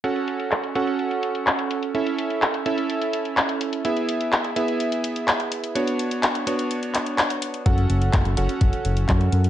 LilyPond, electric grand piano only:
\new Staff \with { instrumentName = "Electric grand piano" } { \time 4/4 \key fis \minor \tempo 4 = 126 <cis' fis' a' fis''>4. <cis' fis' a' fis''>2~ <cis' fis' a' fis''>8 | <cis' e' a' e''>4. <cis' e' a' e''>2~ <cis' e' a' e''>8 | <b e' gis' e''>4. <b e' gis' e''>2~ <b e' gis' e''>8 | <b d' fis' cis''>4. <b d' fis' cis''>2~ <b d' fis' cis''>8 |
<cis' fis' a' fis''>4. <cis' fis' a' fis''>2~ <cis' fis' a' fis''>8 | }